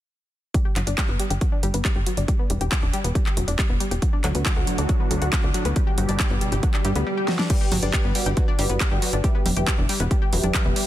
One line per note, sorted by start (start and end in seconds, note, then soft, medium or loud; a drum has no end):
0.54 0.57 G3 medium
0.54 kick loud
0.54 closed hi-hat medium
0.65 0.73 G4 medium
0.76 0.84 G1 medium
0.76 0.81 F#3 medium
0.76 clap soft
0.76 closed hi-hat medium
0.87 0.95 G1 medium
0.87 0.94 D4 medium
0.87 closed hi-hat medium
0.98 1.01 G3 loud
0.98 kick loud
0.98 clap loud
0.98 closed hi-hat medium
1.09 1.17 G1 medium
1.09 1.12 B3 medium
1.20 1.23 G3 medium
1.20 closed hi-hat medium
1.30 1.39 G1 medium
1.30 1.38 G4 medium
1.30 closed hi-hat medium
1.41 1.46 F#3 medium
1.41 kick loud
1.41 closed hi-hat medium
1.52 1.60 D4 medium
1.63 1.71 G1 medium
1.63 1.66 G3 medium
1.63 closed hi-hat medium
1.74 1.82 G1 medium
1.74 1.77 B3 medium
1.74 closed hi-hat medium
1.85 1.88 G3 medium
1.85 kick loud
1.85 clap loud
1.85 closed hi-hat medium
1.96 2.04 G1 medium
1.96 2.03 G4 medium
2.06 2.12 F#3 medium
2.06 closed hi-hat medium
2.17 2.26 G1 medium
2.17 2.25 D4 medium
2.17 closed hi-hat medium
2.28 2.31 G3 loud
2.28 kick loud
2.28 closed hi-hat medium
2.39 2.42 B3 medium
2.50 2.58 E1 medium
2.50 2.53 G3 medium
2.50 closed hi-hat medium
2.61 2.69 E1 medium
2.61 2.68 G4 medium
2.61 closed hi-hat medium
2.72 2.77 F#3 medium
2.72 kick loud
2.72 clap loud
2.72 closed hi-hat medium
2.82 2.91 E1 medium
2.82 2.90 D4 medium
2.93 2.96 G3 medium
2.93 closed hi-hat medium
3.04 3.13 E1 medium
3.04 3.07 B3 medium
3.04 closed hi-hat medium
3.15 3.18 G3 medium
3.15 kick loud
3.15 closed hi-hat medium
3.26 3.34 G4 medium
3.26 clap soft
3.37 3.45 E1 medium
3.37 3.42 F#3 medium
3.37 closed hi-hat medium
3.48 3.56 E1 medium
3.48 3.55 D4 medium
3.48 closed hi-hat medium
3.59 3.62 G3 loud
3.59 kick loud
3.59 clap loud
3.59 closed hi-hat medium
3.70 3.78 E1 medium
3.70 3.73 B3 medium
3.80 3.83 G3 medium
3.80 closed hi-hat medium
3.91 4.00 E1 medium
3.91 3.99 G4 medium
3.91 closed hi-hat medium
4.02 5.74 A2 medium
4.02 7.03 D3 medium
4.02 4.07 F#3 medium
4.02 5.74 F#3 medium
4.02 7.03 D4 medium
4.02 5.74 F#4 medium
4.02 kick loud
4.02 closed hi-hat medium
4.13 4.21 D4 medium
4.24 4.32 D2 medium
4.24 4.27 F#3 loud
4.24 clap soft
4.24 closed hi-hat medium
4.35 4.43 D2 medium
4.35 4.38 B3 medium
4.35 closed hi-hat medium
4.46 4.49 F#3 medium
4.46 kick loud
4.46 clap loud
4.46 closed hi-hat medium
4.57 4.65 D2 medium
4.57 4.64 F#4 medium
4.67 4.72 F#3 medium
4.67 closed hi-hat medium
4.78 4.87 D2 medium
4.78 4.86 D4 medium
4.78 closed hi-hat medium
4.89 4.92 F#3 loud
4.89 kick loud
4.89 closed hi-hat medium
5.00 5.03 B3 medium
5.11 5.19 D2 medium
5.11 5.14 F#3 medium
5.11 closed hi-hat medium
5.22 5.30 D2 medium
5.22 5.29 F#4 medium
5.22 closed hi-hat medium
5.33 5.38 F#3 medium
5.33 kick loud
5.33 clap loud
5.33 closed hi-hat medium
5.43 5.52 D2 medium
5.43 5.51 D4 medium
5.54 5.57 F#3 loud
5.54 closed hi-hat medium
5.65 5.74 D2 medium
5.65 5.68 B3 medium
5.65 closed hi-hat medium
5.76 7.05 B2 medium
5.76 7.05 G3 medium
5.76 5.79 G3 medium
5.76 7.05 G4 medium
5.76 kick loud
5.76 closed hi-hat medium
5.87 5.95 G4 medium
5.98 6.06 G1 medium
5.98 6.03 F#3 medium
5.98 closed hi-hat medium
6.09 6.17 G1 medium
6.09 6.16 D4 medium
6.09 closed hi-hat medium
6.20 6.23 G3 loud
6.20 kick loud
6.20 clap loud
6.20 closed hi-hat medium
6.30 6.39 G1 medium
6.30 6.34 B3 medium
6.41 6.44 G3 medium
6.41 closed hi-hat medium
6.52 6.60 G1 medium
6.52 6.60 G4 medium
6.52 closed hi-hat medium
6.63 6.68 F#3 medium
6.63 kick loud
6.63 closed hi-hat medium
6.63 swell medium
6.74 6.82 D4 medium
6.74 clap soft
6.85 6.93 G2 medium
6.85 6.88 G3 loud
6.85 closed hi-hat medium
6.96 7.04 D2 medium
6.96 6.99 B3 medium
6.96 closed hi-hat medium
7.07 7.10 G3 medium
7.17 7.25 G4 medium
7.28 7.33 F#3 medium
7.28 snare medium
7.39 7.47 D4 medium
7.39 snare medium
7.50 7.53 G3 medium
7.50 7.72 G4 medium
7.50 7.72 B4 medium
7.50 7.72 D5 medium
7.50 7.72 G5 loud
7.50 kick loud
7.50 closed hi-hat medium
7.50 crash medium
7.61 7.68 G4 medium
7.72 7.80 G1 medium
7.72 7.77 F#3 medium
7.72 open hi-hat loud
7.72 high conga medium
7.83 7.91 G1 medium
7.83 7.90 D4 medium
7.83 8.05 G4 medium
7.83 8.05 B4 medium
7.83 8.05 D5 medium
7.83 8.05 G5 medium
7.83 closed hi-hat medium
7.93 7.97 G3 loud
7.93 kick loud
7.93 clap loud
7.93 closed hi-hat medium
8.04 8.13 G1 medium
8.04 8.07 B3 medium
8.15 8.18 G3 medium
8.15 8.45 F#4 medium
8.15 8.45 B4 medium
8.15 8.45 D5 medium
8.15 8.45 F#5 medium
8.15 open hi-hat loud
8.26 8.34 G1 medium
8.26 8.34 G4 medium
8.26 closed hi-hat medium
8.37 8.42 F#3 medium
8.37 kick loud
8.37 closed hi-hat medium
8.48 8.55 D4 medium
8.59 8.67 G1 medium
8.59 8.62 G3 loud
8.59 8.81 F#4 medium
8.59 8.81 B4 medium
8.59 8.81 D5 medium
8.59 8.81 F#5 medium
8.59 open hi-hat loud
8.69 8.78 G1 medium
8.69 8.73 B3 medium
8.69 closed hi-hat medium
8.80 8.84 G3 medium
8.80 kick loud
8.80 clap loud
8.80 closed hi-hat medium
8.91 9.00 G1 medium
8.91 9.13 F#4 medium
8.91 8.99 G4 medium
8.91 9.13 B4 medium
8.91 9.13 D5 medium
8.91 9.13 F#5 medium
9.02 9.07 F#3 medium
9.02 open hi-hat loud
9.13 9.21 G1 medium
9.13 9.21 D4 medium
9.13 closed hi-hat medium
9.24 9.27 G3 loud
9.24 9.46 G4 medium
9.24 9.46 B4 medium
9.24 9.46 E5 medium
9.24 9.46 G5 loud
9.24 kick loud
9.24 closed hi-hat medium
9.35 9.38 B3 medium
9.46 9.54 E1 medium
9.46 9.49 G3 medium
9.46 open hi-hat loud
9.46 high conga medium
9.56 9.65 E1 medium
9.56 9.79 G4 medium
9.56 9.64 G4 medium
9.56 9.79 B4 medium
9.56 9.79 E5 medium
9.56 9.79 G5 medium
9.56 closed hi-hat medium
9.67 9.72 F#3 medium
9.67 kick loud
9.67 clap loud
9.67 closed hi-hat medium
9.78 9.87 E1 medium
9.78 9.86 D4 medium
9.89 9.92 G3 loud
9.89 open hi-hat loud
10.00 10.08 E1 medium
10.00 10.03 B3 medium
10.00 closed hi-hat medium
10.11 10.14 G3 medium
10.11 kick loud
10.11 closed hi-hat medium
10.22 10.29 G4 medium
10.33 10.41 E1 medium
10.33 10.38 F#3 medium
10.33 10.55 G4 medium
10.33 10.55 B4 medium
10.33 10.55 E5 medium
10.33 10.55 G5 medium
10.33 open hi-hat loud
10.44 10.52 E1 medium
10.44 10.51 D4 medium
10.44 closed hi-hat medium
10.44 high conga medium
10.54 10.57 G3 loud
10.54 kick loud
10.54 clap loud
10.54 closed hi-hat medium
10.65 10.74 E1 medium
10.65 10.68 B3 medium
10.65 10.87 G4 medium
10.65 10.87 B4 medium
10.65 10.87 E5 medium
10.65 10.87 G5 medium
10.76 10.79 G3 medium
10.76 open hi-hat loud